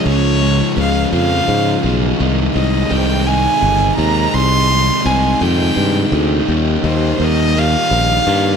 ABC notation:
X:1
M:6/8
L:1/8
Q:3/8=56
K:Ab
V:1 name="Violin"
d2 f f2 z | z e g a2 b | c'2 a g2 z | z c e f3 |]
V:2 name="Distorted electric guitar" clef=bass
[D,F,A,D] [F,A,D] [D,F,A,D] [D,F,A,D]2 [F,A,D] | [C,E,A,E] [E,A,E] [C,E,A,E] [C,E,A,E]2 [E,A,E] | [C,E,A,E] [E,A,E] [C,E,A,E] [C,E,A,E]2 [E,A,E] | [E,G,B,E] [G,B,E] [E,G,B,E] [E,G,B,E]2 [G,B,E] |]
V:3 name="Fingered electric bass" clef=bass
D,,2 D,, F,, A,, _C,, | C,, C,, C,,2 G,,, E,, | C,,2 C,, F,, G,, =D,, | E,, E,, E,,2 B,,, G,, |]